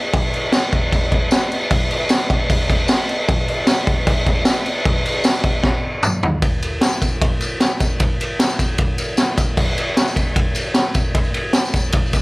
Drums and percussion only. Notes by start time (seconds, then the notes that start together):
0.13 kick, crash
0.34 crash
0.52 snare, tambourine, crash
0.73 kick, crash
0.92 kick, crash
1.12 kick, crash
1.31 snare, tambourine, crash
1.52 crash
1.71 kick, crash
1.91 crash
2.09 snare, tambourine, crash
2.30 kick, crash
2.50 kick, crash
2.70 kick, crash
2.88 snare, tambourine, crash
3.09 crash
3.29 kick, crash
3.48 crash
3.67 snare, tambourine, crash
3.87 kick, crash
4.07 kick, crash
4.27 kick, crash
4.45 snare, tambourine, crash
4.66 crash
4.85 kick, crash
5.06 crash
5.24 snare, tambourine, crash
5.44 kick, crash
5.63 kick, snare
6.03 mid tom, tambourine
6.23 floor tom
6.42 kick, ride, tambourine
6.62 ride, tambourine
6.81 snare, ride, tambourine
6.93 tambourine
7.02 kick, ride, tambourine
7.22 kick, ride
7.41 ride, tambourine
7.60 snare, ride, tambourine
7.71 tambourine
7.80 kick, ride, tambourine
7.91 tambourine
8.00 kick, ride, tambourine
8.20 ride, tambourine
8.39 snare, ride, tambourine
8.49 tambourine
8.59 kick, ride, tambourine
8.78 kick, ride
8.98 ride, tambourine
9.17 snare, ride, tambourine
9.28 tambourine
9.37 kick, ride, tambourine
9.57 kick, tambourine, crash
9.78 ride, tambourine
9.97 snare, ride, tambourine
10.08 tambourine
10.16 kick, ride, tambourine
10.36 kick, ride
10.55 ride, tambourine
10.74 snare, ride, tambourine
10.85 tambourine
10.94 kick, ride, tambourine
11.04 tambourine
11.15 kick, ride, tambourine
11.24 tambourine
11.34 ride
11.53 snare, ride, tambourine
11.65 tambourine
11.74 kick, ride, tambourine
11.86 tambourine
11.92 kick, ride
12.06 tambourine
12.13 kick, ride, tambourine